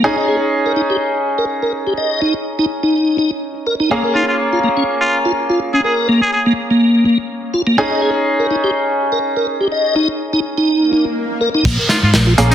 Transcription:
0.04 C#4 D#4 G#4
0.17 D#5
0.28 G#4
0.66 A#4
0.76 D#4
0.90 G4
1.38 A#4
1.62 A#4
1.87 G4
1.98 D#5
2.22 D#4
2.59 D#4
2.83 D#4
3.18 D#4
3.67 A#4
3.80 D#4
3.91 A#3 C#4 G#4
4.04 A#4
4.15 D#4 F4
4.28 F4
4.53 F4
4.64 A#3
4.77 C#4
5.01 F4
5.25 F4
5.50 F4
5.74 C#4 G#4
5.84 G#4 A#4
6.09 A#3
6.22 G#4
6.33 G#4
6.46 A#3
6.71 A#3
7.05 A#3
7.54 F4
7.67 A#3
7.78 C#4 D#4 G#4
7.91 D#5
8.02 G#4
8.40 A#4
8.51 D#4
8.64 G4
9.12 A#4
9.37 A#4
9.61 G4
9.72 D#5
9.96 D#4
10.33 D#4
10.58 D#4
10.69 swell
10.93 D#4
11.41 A#4
11.55 D#4
11.65 A#1 A#3, kick, closed hi-hat, crash, downlifter
11.79 A#4
11.89 D#4 F4, snare, closed hi-hat
12.03 G#2 F4
12.14 A#1, snare, closed hi-hat
12.27 F4
12.38 A#1 A#3 C#4 G#4, closed hi-hat
12.51 C#4 D#4, closed hi-hat

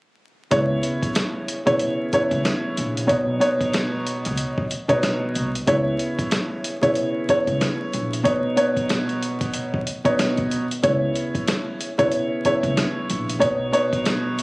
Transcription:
0.50 C#2 C#3 B3 E4 C#5, kick, closed hi-hat
0.83 closed hi-hat
1.03 kick, closed hi-hat
1.15 cross-stick, snare, closed hi-hat
1.48 closed hi-hat
1.66 B1 C#3 B3 E4 C#5, kick, closed hi-hat
1.79 closed hi-hat
2.13 C#3 B3 E4 C#5, kick, closed hi-hat
2.31 C#2, kick, closed hi-hat
2.45 cross-stick, snare, closed hi-hat
2.77 A#1, closed hi-hat
2.97 closed hi-hat
3.07 B1 B2 B3 D#4 C#5, kick, closed hi-hat
3.40 B2 B3 D#4 C#5, closed hi-hat
3.61 kick, closed hi-hat
3.73 cross-stick, snare, closed hi-hat
4.07 closed hi-hat
4.25 C#2, closed hi-hat
4.37 closed hi-hat
4.58 kick
4.71 closed hi-hat
4.88 B1 B2 B3 D#4 C#5, kick, closed hi-hat
5.03 cross-stick, snare, closed hi-hat
5.35 C2, closed hi-hat
5.55 closed hi-hat
5.67 C#2 C#3 B3 E4 C#5, kick, closed hi-hat
5.99 closed hi-hat
6.19 kick, closed hi-hat
6.31 cross-stick, snare, closed hi-hat
6.64 closed hi-hat
6.82 B1 C#3 B3 E4 C#5, kick, closed hi-hat
6.95 closed hi-hat
7.29 C#3 B3 E4 C#5, kick, closed hi-hat
7.47 C#2, kick, closed hi-hat
7.61 cross-stick, snare, closed hi-hat
7.93 A#1, closed hi-hat
8.13 closed hi-hat
8.23 B2 B3 D#4 C#5, kick, closed hi-hat
8.56 B2 B3 D#4 C#5, closed hi-hat
8.77 kick, closed hi-hat
8.89 cross-stick, snare, closed hi-hat
9.09 closed hi-hat
9.22 closed hi-hat
9.41 kick, closed hi-hat
9.53 closed hi-hat
9.74 kick
9.87 closed hi-hat
10.04 B2 B3 D#4 C#5, kick, closed hi-hat
10.19 cross-stick, snare, closed hi-hat
10.37 kick, closed hi-hat
10.51 closed hi-hat
10.71 closed hi-hat
10.83 C#2 C#3 B3 E4 C#5, kick, closed hi-hat
11.15 closed hi-hat
11.35 kick, closed hi-hat
11.47 cross-stick, snare, closed hi-hat
11.81 closed hi-hat
11.98 B1 C#3 B3 E4 C#5, kick, closed hi-hat
12.12 closed hi-hat
12.45 C#3 B3 E4 C#5, kick, closed hi-hat
12.63 C#2, kick, closed hi-hat
12.77 cross-stick, snare, closed hi-hat
13.10 A#1, closed hi-hat
13.29 closed hi-hat
13.39 B1 B2 B3 D#4 C#5, kick, closed hi-hat
13.72 B2 B3 D#4 C#5, closed hi-hat
13.93 kick, closed hi-hat
14.06 cross-stick, snare, closed hi-hat
14.39 closed hi-hat

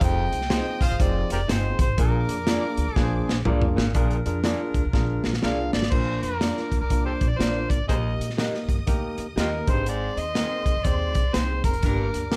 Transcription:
0.00 F1 F2 C4 D#4 F4 G#4 C5 D#5 D#6, kick, closed hi-hat
0.04 G5
0.32 C2, closed hi-hat
0.41 snare
0.49 C4 D#4 F4 G#4 C5, snare, closed hi-hat
0.81 G#1 F4 G#4 C5 F5, kick, closed hi-hat
0.90 G1
1.00 F1 C4 D#4 F4 G#4 C5 D5, kick, closed hi-hat
1.30 F1 G4 A#4 D5, closed hi-hat
1.48 G1 C4 D#4 F4 G#4 C5, snare, closed hi-hat
1.79 G#1 C5, kick, closed hi-hat
1.98 A#1 A#2 A#3 D4 F4 G#4 A#4 D5 D6, kick, closed hi-hat
2.29 F2, closed hi-hat
2.47 A#3 D4 F4 G#4 A#4 D5, snare, closed hi-hat
2.77 D2, closed hi-hat
2.87 C2
2.96 A#1 A#3 D4 F4 G#4 B4, kick, snare
3.04 C5
3.27 A#1, snare
3.45 C2 A#3 D4 F4 G#4 A#4 D5, mid tom
3.62 floor tom
3.76 G#1 A#2, snare
3.94 A#1 A#2 D4 F4 G#4 A#4, kick, closed hi-hat
4.11 closed hi-hat
4.26 F2 D4 F4 G#4 A#4, closed hi-hat
4.44 D4 F4 G#4 A#4 D5, snare, closed hi-hat
4.74 D2, kick, closed hi-hat
4.85 C2
4.93 A#1 D4 F4 G#4 A#4, kick, snare
5.24 A#1, snare
5.33 snare
5.42 C2 D4 F4 G#4 A#4 D5 F5, snare
5.73 G#1 D5, snare
5.82 snare
5.91 A#1 A#2 A#3 D4 F4 A#4 C5 D5 D6, kick, crash
6.23 F2 A#4, closed hi-hat
6.41 A#3 D4 F4 A#4 D5, snare, closed hi-hat
6.57 snare
6.72 D2, kick, closed hi-hat
6.81 C2 A#4
6.90 A#3 D4 F4 A#4, kick, closed hi-hat
7.05 G4 A4 C5
7.21 A#1, kick, closed hi-hat
7.29 D5
7.38 A#1 A#3 D4 F4 A#4 C5 D5, snare, closed hi-hat
7.70 G#1 D5, kick, closed hi-hat
7.88 A#1 D#2 A#3 D#4 G4 G#4 A#4 C5 D#5 D#6, kick, closed hi-hat
8.21 closed hi-hat
8.30 snare
8.37 A#3 D#4 G4 A#4 D#5, snare, closed hi-hat
8.54 snare
8.69 G2, kick, closed hi-hat
8.78 D#2
8.87 D2 A#3 D#4 G4 A#4, kick, closed hi-hat
9.18 D2, closed hi-hat
9.36 D#2 A#3 D#4 F4 G4 A#4 D#5, snare, closed hi-hat
9.67 G#1 G2 C4 D#4 G#4 C5 C6, kick, closed hi-hat
9.71 C5
9.86 G#2 D5, closed hi-hat
10.17 D#2 D#5, closed hi-hat
10.35 C4 D#4 G#4 A#4 C5, snare, closed hi-hat
10.66 G#2, kick, closed hi-hat
10.76 F2
10.84 D#2 C4 D#4 G#4 C5 D5, kick, closed hi-hat
11.15 C2, kick, closed hi-hat
11.33 C2 C4 D#4 G#4 C5, snare, closed hi-hat
11.64 F1 A#4, kick, closed hi-hat
11.73 closed hi-hat
11.83 G1 G2 A#3 D4 G4 A#4 D5 D6, kick, closed hi-hat
12.14 D2, closed hi-hat
12.31 A#3 D4 G4 A#4, snare, closed hi-hat

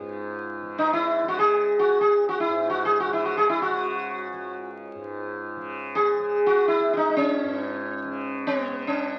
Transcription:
Already playing: C#2 C#3
0.00 G#2
0.62 C#3
0.78 D#4
0.93 E4
1.23 C#3
1.28 F#4
1.39 G#4
1.79 F#4
1.86 C#2
2.01 G#4
2.29 F#4
2.40 E4
2.47 G#2
2.70 F#4
2.85 G#4
3.00 F#4
3.08 C#3
3.13 E4
3.25 F#4
3.37 G#4
3.49 E4
3.62 F#4
3.70 C#3
4.32 C#2
4.94 G#2
5.56 C#3
5.95 G#4
6.18 C#3
6.46 F#4
6.68 E4
6.79 C#2
6.93 D#4 E4
7.10 D#4
7.17 C#4
7.43 G#2
8.04 C#3
8.47 B3
8.68 C#3
8.87 C#4

